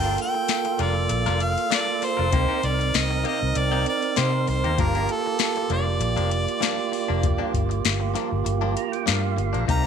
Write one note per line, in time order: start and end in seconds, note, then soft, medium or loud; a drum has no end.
0.00 0.16 G1 medium
0.00 2.28 A#3 medium
0.00 2.29 F4 medium
0.00 0.17 F4 medium
0.00 2.30 A4 medium
0.00 0.17 A#4 medium
0.00 0.18 G5 loud
0.00 closed hi-hat soft
0.04 0.16 G3 soft
0.04 0.17 D4 medium
0.18 0.83 G5 loud
0.18 muted clean electric guitar stroke soft
0.18 closed hi-hat medium
0.34 muted clean electric guitar stroke soft
0.48 snare loud
0.48 closed hi-hat medium
0.65 muted clean electric guitar stroke soft
0.65 closed hi-hat soft
0.79 1.08 F1 medium
0.79 0.96 G3 soft
0.79 0.96 D4 medium
0.79 0.95 F4 medium
0.79 0.95 A#4 medium
0.79 1.45 D5 medium
0.79 closed hi-hat medium
0.96 muted clean electric guitar stroke soft
1.09 1.25 A#1 medium
1.09 muted clean electric guitar stroke soft
1.09 closed hi-hat medium
1.26 1.55 F1 medium
1.26 1.40 G3 medium
1.26 1.40 D4 medium
1.26 1.40 F4 medium
1.26 1.40 A#4 medium
1.26 snare soft
1.26 closed hi-hat soft
1.40 1.73 F5 medium
1.40 muted clean electric guitar stroke soft
1.40 closed hi-hat medium
1.58 closed hi-hat soft
1.70 1.88 G3 medium
1.70 1.87 D4 medium
1.70 1.87 F4 medium
1.70 1.86 A#4 medium
1.70 2.06 D5 medium
1.70 snare loud
1.70 closed hi-hat medium
1.87 muted clean electric guitar stroke soft
2.02 2.67 C5 medium
2.02 muted clean electric guitar stroke soft
2.02 snare soft
2.02 open hi-hat medium
2.17 2.32 F1 medium
2.17 2.32 D4 soft
2.17 2.32 F4 medium
2.17 2.32 A#4 medium
2.31 2.48 C2 loud
2.31 2.48 C3 medium
2.31 2.48 A#3 medium
2.31 4.73 C4 medium
2.31 2.48 D#4 medium
2.31 4.74 D#4 medium
2.31 2.47 G4 medium
2.31 kick loud
2.31 closed hi-hat medium
2.35 4.75 A#4 medium
2.48 2.61 C3 medium
2.48 2.61 A#3 medium
2.48 2.62 D#4 medium
2.48 2.62 G4 medium
2.62 2.92 C2 medium
2.62 2.98 D5 medium
2.62 muted clean electric guitar stroke soft
2.62 closed hi-hat medium
2.79 muted clean electric guitar stroke soft
2.79 closed hi-hat soft
2.94 3.23 C2 medium
2.94 3.26 D#5 loud
2.94 snare loud
2.94 closed hi-hat medium
3.10 muted clean electric guitar stroke soft
3.24 3.41 C3 medium
3.24 3.41 A#3 medium
3.24 3.40 D#4 medium
3.24 3.40 G4 medium
3.24 3.59 D#5 medium
3.24 closed hi-hat medium
3.41 3.55 C2 medium
3.41 muted clean electric guitar stroke soft
3.55 3.84 C2 loud
3.55 3.87 D5 medium
3.55 muted clean electric guitar stroke soft
3.55 closed hi-hat medium
3.72 3.85 C3 medium
3.72 3.85 A#3 medium
3.72 3.85 D#4 medium
3.72 3.85 G4 medium
3.86 4.20 D5 medium
3.86 closed hi-hat medium
4.02 closed hi-hat soft
4.16 4.33 C3 medium
4.16 4.46 C3 medium
4.16 4.33 A#3 medium
4.16 4.32 D#4 medium
4.16 4.32 G4 medium
4.16 4.48 C5 medium
4.16 snare loud
4.16 closed hi-hat medium
4.47 4.63 C2 medium
4.47 4.82 C5 medium
4.47 muted clean electric guitar stroke soft
4.47 open hi-hat medium
4.64 4.77 D#2 medium
4.64 4.78 A#3 soft
4.64 4.79 D#4 soft
4.64 4.78 G4 medium
4.64 closed hi-hat soft
4.77 5.07 G1 medium
4.77 4.94 G2 medium
4.77 4.95 F3 medium
4.77 9.64 A#3 medium
4.77 4.94 A#3 medium
4.77 4.94 D4 medium
4.77 9.65 F4 medium
4.77 9.66 G4 medium
4.77 5.13 A#4 medium
4.77 kick loud
4.77 closed hi-hat medium
4.95 5.09 G2 medium
4.95 5.09 F3 medium
4.95 5.09 A#3 medium
4.95 5.09 D4 medium
4.95 closed hi-hat soft
5.09 5.41 A4 medium
5.09 muted clean electric guitar stroke soft
5.09 closed hi-hat medium
5.26 muted clean electric guitar stroke soft
5.39 5.70 A4 medium
5.39 snare loud
5.39 closed hi-hat medium
5.56 muted clean electric guitar stroke soft
5.56 closed hi-hat soft
5.70 5.98 F1 medium
5.70 5.87 G2 medium
5.70 5.86 F3 medium
5.70 5.86 A#3 medium
5.70 5.86 D4 medium
5.70 7.51 D5 medium
5.70 closed hi-hat medium
5.87 muted clean electric guitar stroke soft
6.00 6.16 A#1 medium
6.00 muted clean electric guitar stroke soft
6.00 closed hi-hat medium
6.16 6.45 F1 medium
6.16 6.30 G2 medium
6.16 6.30 F3 medium
6.16 6.30 A#3 medium
6.16 6.31 D4 medium
6.16 closed hi-hat soft
6.31 muted clean electric guitar stroke soft
6.31 closed hi-hat medium
6.48 closed hi-hat soft
6.60 6.78 G2 medium
6.60 6.78 F3 medium
6.60 6.77 A#3 medium
6.60 6.77 D4 medium
6.60 snare loud
6.60 closed hi-hat medium
6.78 muted clean electric guitar stroke soft
6.92 muted clean electric guitar stroke soft
6.92 open hi-hat medium
7.08 7.38 F1 medium
7.08 7.27 F3 soft
7.08 7.27 A#3 medium
7.08 7.26 D4 medium
7.23 kick loud
7.23 closed hi-hat medium
7.38 7.52 G2 medium
7.38 7.52 F3 medium
7.38 7.53 A#3 medium
7.38 7.53 D4 medium
7.38 muted fingered electric bass stroke soft
7.53 7.82 G1 medium
7.53 muted clean electric guitar stroke soft
7.53 kick medium
7.53 closed hi-hat medium
7.69 muted clean electric guitar stroke soft
7.69 closed hi-hat soft
7.85 8.13 G1 medium
7.85 snare loud
7.85 closed hi-hat medium
8.00 muted clean electric guitar stroke soft
8.14 8.31 G2 medium
8.14 8.30 F3 medium
8.14 8.30 A#3 medium
8.14 8.29 D4 medium
8.14 snare soft
8.14 closed hi-hat medium
8.30 8.45 G1 medium
8.30 muted clean electric guitar stroke soft
8.45 8.74 G1 medium
8.45 muted clean electric guitar stroke soft
8.45 closed hi-hat medium
8.61 8.74 G2 medium
8.61 8.74 F3 medium
8.61 8.75 A#3 medium
8.61 8.75 D4 medium
8.75 8.92 A#5 medium
8.75 muted clean electric guitar stroke soft
8.75 closed hi-hat medium
8.92 9.06 G5 medium
8.92 closed hi-hat soft
9.06 9.23 G2 medium
9.06 9.36 G2 medium
9.06 9.23 F3 medium
9.06 9.22 A#3 medium
9.06 9.22 D4 medium
9.06 9.22 F5 medium
9.06 snare loud
9.06 closed hi-hat medium
9.23 9.65 F5 medium
9.23 muted clean electric guitar stroke medium
9.37 9.53 G1 medium
9.37 muted clean electric guitar stroke soft
9.37 closed hi-hat soft
9.53 9.67 A#1 medium
9.53 9.69 F3 soft
9.53 9.67 A#3 soft
9.53 9.68 D4 medium
9.53 closed hi-hat soft
9.67 9.87 C2 medium
9.67 9.84 C3 medium
9.67 9.83 A#3 medium
9.67 9.87 C4 medium
9.67 9.83 D#4 medium
9.67 9.87 D#4 soft
9.67 9.82 G4 medium
9.67 9.87 A#5 loud
9.67 kick loud
9.67 closed hi-hat medium
9.72 9.87 A#4 medium
9.83 9.87 G4 medium